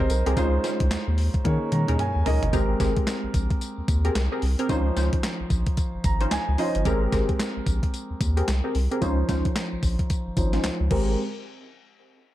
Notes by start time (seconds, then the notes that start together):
Already playing: G#3 C4 D#4 G4 A#4 D#5
0.00 C4 G4 G#4 A#4 C5
0.10 B1 A#4, closed hi-hat, tambourine
0.26 C2 C4 G4 G#4 A#4, closed hi-hat
0.36 C#2 G#3 C#4 D#4 F4 C5, kick, closed hi-hat, tambourine
0.64 C#4 D#4 F4 C5, snare, closed hi-hat, tambourine
0.80 C2, kick, closed hi-hat
0.91 D#2, snare, clap, closed hi-hat, tambourine
1.08 D#2
1.18 open hi-hat
1.34 kick, closed hi-hat
1.44 D#3 A#3 C#4 D#4 G#4 C#5, kick, closed hi-hat, high tom
1.72 D#3 A#5, closed hi-hat, mid tom
1.88 D#2 C#4 D#4 G#4 A#4, closed hi-hat, mid tom
1.99 G#5, closed hi-hat, mid tom
2.16 D#2
2.26 C#2 C#4 D#4 G#4 A#4 D#5, floor tom, open hi-hat
2.43 G1, closed hi-hat, floor tom
2.53 G#1 G#3 C4 G4 G#4 A#4, kick, closed hi-hat, tambourine
2.80 G#1 C4 G4 G#4 A#4, kick, snare, closed hi-hat, tambourine
2.96 kick, closed hi-hat
3.07 snare, clap, closed hi-hat, tambourine
3.24 A#1
3.34 A#1, kick, closed hi-hat, tambourine
3.50 kick, closed hi-hat
3.61 closed hi-hat, tambourine
3.78 D#2
3.88 D#2, kick, closed hi-hat, tambourine
4.05 C4 G4 G#4 A#4, closed hi-hat
4.15 C2, snare, clap, closed hi-hat, tambourine
4.32 C4 G4 G#4 A#4
4.42 C2, open hi-hat
4.59 C4 G4 G#4 A#4, closed hi-hat
4.69 C#2 D#3 C#4 D#4 F4 C5, kick, closed hi-hat, tambourine
4.75 F3
4.96 C#2 C#4 D#4 F4 C5, snare, closed hi-hat, tambourine
5.13 kick, closed hi-hat
5.23 snare, clap, closed hi-hat, tambourine
5.40 A#1
5.50 A#1, kick, closed hi-hat, tambourine
5.66 kick, closed hi-hat
5.77 kick, closed hi-hat, tambourine
5.94 G#1
6.04 G#1 A#5, kick, closed hi-hat, tambourine
6.21 C#4 D#4 F4 C5, closed hi-hat
6.31 C#2 G#5, snare, clap, closed hi-hat, tambourine
6.48 C#2
6.58 F3 C#4 D#4 F4 C5 D#5, open hi-hat
6.75 G1, closed hi-hat
6.85 G#1 G#3 C4 G4 G#4 A#4, kick, closed hi-hat, tambourine
7.12 G#1 C4 G4 G#4 A#4, kick, snare, closed hi-hat, tambourine
7.29 kick, closed hi-hat
7.40 snare, clap, closed hi-hat, tambourine
7.57 A#1
7.67 A#1, kick, closed hi-hat, tambourine
7.83 kick, closed hi-hat
7.94 closed hi-hat, tambourine
8.10 D#2
8.21 D#2, kick, closed hi-hat, tambourine
8.37 C4 G4 G#4 A#4, closed hi-hat
8.48 C2, snare, clap, closed hi-hat, tambourine
8.64 C4 G4 G#4 A#4
8.75 C2, open hi-hat
8.91 C4 G4 G#4 A#4, closed hi-hat
9.01 C#2 F3 C#4 D#4 F4 C5, kick, closed hi-hat, tambourine
9.29 C#2 C#4 D#4 F4 C5, kick, snare, closed hi-hat, tambourine
9.45 kick, closed hi-hat
9.56 snare, clap, closed hi-hat, tambourine
9.73 A#1
9.83 A#1, kick, open hi-hat, tambourine
9.99 kick, closed hi-hat
10.10 kick, closed hi-hat, tambourine
10.27 G#1
10.37 G#1 F3 C#4 D#4 C5, kick, closed hi-hat, tambourine
10.53 C#4 D#4 F4 C5, snare, closed hi-hat
10.64 C#2, snare, clap, closed hi-hat, tambourine
10.80 C#2
10.90 G#1 G#3 C4 G4 G#4 A#4, kick, crash